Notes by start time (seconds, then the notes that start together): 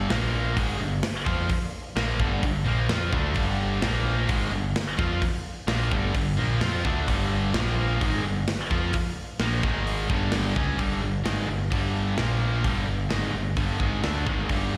0.08 A#1 A#2 F3 A#3, snare, open hi-hat
0.56 G#1 G#2 D#3 G#3, kick, open hi-hat
0.80 G1 G2 D3
1.03 snare, open hi-hat
1.25 F2 F3 C4 F4, kick
1.49 kick, open hi-hat
1.96 A#1 A#2 F3 A#3, snare, open hi-hat
2.20 G1 G2 D3 G3, kick
2.43 G1 G2 D3, kick, open hi-hat
2.65 A#1 A#2 F3 A#3
2.88 F2 F3 C4 F4, snare, open hi-hat
3.12 D2 D3 A3 D4, kick
3.34 G1 G2 D3 G3, kick, open hi-hat
3.81 A#1 A#2 F3 A#3, snare, open hi-hat
4.29 G#1 G#2 D#3 G#3, kick, open hi-hat
4.50 G1 G2 D3
4.76 snare, open hi-hat
4.97 F2 F3 C4 F4, kick
5.22 kick, open hi-hat
5.67 A#1 A#2 F3 A#3, snare, open hi-hat
5.91 G1 G2 D3 G3, kick
6.14 G1 G2 D3, kick, open hi-hat
6.37 A#1 A#2 F3 A#3
6.60 F2 F3 C4 F4, snare, open hi-hat
6.85 D2 D3 A3 D4, kick
7.08 G1 G2 D3 G3, kick, open hi-hat
7.54 A#1 A#2 F3 A#3, snare, open hi-hat
8.01 G#1 G#2 D#3 G#3, kick, open hi-hat
8.23 G1 G2 D3
8.48 snare, open hi-hat
8.70 F2 F3 C4 F4, kick
8.93 kick, open hi-hat
9.39 A#1 A#2 F3 A#3, snare, open hi-hat
9.63 G#1 G#2 D#3 G#3, kick
9.87 open hi-hat
10.09 G1 G2 D3 G3, kick
10.32 snare, open hi-hat
10.55 C#2 C#3 G#3 C#4, kick
10.78 G1 G2 D3 G3, kick, open hi-hat
11.01 G1 G2 D3
11.24 G#1 G#2 D#3 G#3, snare, open hi-hat
11.48 G1 G2 D3
11.70 G1 G2 D3 G3, kick, open hi-hat
12.17 A#1 A#2 F3 A#3, snare, open hi-hat
12.64 G1 G2 D3 G3, kick, open hi-hat
12.86 G1 G2 D3
13.10 G#1 G#2 D#3 G#3, snare, open hi-hat
13.33 G1 G2 D3
13.56 G1 G2 D3 G3, kick, open hi-hat
13.80 G#1 G#2 D#3 G#3, kick
14.03 D2 D3 A3 D4, snare, open hi-hat
14.26 G#1 G#2 D#3 G#3, kick
14.49 G1 G2 D3 G3, kick, open hi-hat
14.73 G1 G2 D3